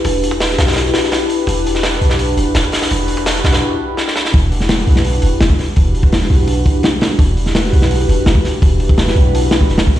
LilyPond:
<<
  \new Staff \with { instrumentName = "Ambient pad" } { \time 4/4 \key e \minor \tempo 4 = 168 <d' e' fis' g' b'>2~ <d' e' fis' g' b'>8 r4. | <d' e' fis' g' b'>2~ <d' e' fis' g' b'>8 r4. | <d' e' fis' g' b'>2~ <d' e' fis' g' b'>8 r4. | <d' e' fis' g' b'>2~ <d' e' fis' g' b'>8 r4. |
<d' e' fis' g' b'>2~ <d' e' fis' g' b'>8 r4. | <d' e' fis' g' b'>2~ <d' e' fis' g' b'>8 r4. | <d' e' fis' g' b'>2~ <d' e' fis' g' b'>8 r4. | }
  \new Staff \with { instrumentName = "808-style bass" } { \clef bass \time 4/4 \key e \minor e,,4. b,,4 r4. | e,,4. b,,4 e,,8 e,,8 r8 | e,,4. b,,8 r2 | e,,4. b,,4 e,,8 e,,8 r8 |
e,,4. b,,4 r4. | e,,4. b,,4 e,,8 e,,8 r8 | e,,4. b,,4. d,,8 b,,8 | }
  \new DrumStaff \with { instrumentName = "Drums" } \drummode { \time 4/4 <hho bd>8 hho16 bd16 <hho sn>16 sn16 <hho sn>16 <hho sn>32 <hho sn>32 <hho sn>16 sn16 <hho sn>16 sn16 <hho sn>8 hho8 | <hho bd>8 hho16 sn16 <hho sn>16 sn16 hho16 sn16 hho8 hho8 <hho sn>16 bd16 <hho sn>16 <hho sn>16 | <hho bd>8 hho16 bd16 <hho sn>16 sn16 <hho sn>16 <hho sn>16 r4 sn16 sn16 sn16 sn16 | <hho bd>8 hho16 sn16 <hho sn>16 sn16 hho16 sn16 hho8 hho8 <hho sn>16 bd16 <hho sn>8 |
<hho bd>8 hho16 bd16 <hho sn>16 sn16 hho8 hho8 <hho bd>8 <hho sn>8 <hho sn>8 | <hho bd>8 hho16 sn16 <hho sn>16 sn16 hho16 sn16 hho8 hho8 <hho sn>16 bd16 <hho sn>8 | <hho bd>8 hho16 bd16 <hho sn>16 sn16 hho8 hho8 <hho sn>16 bd16 <hho sn>16 <hho sn>16 bd16 <hho sn>16 | }
>>